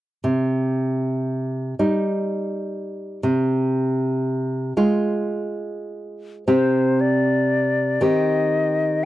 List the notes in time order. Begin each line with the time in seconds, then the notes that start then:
0.24 C3
1.79 G3 D#4
3.23 C3
4.77 G#3 F4
6.47 C3 C4 G4 C5
7.01 D5
8.01 D#3 C4 G4 D#5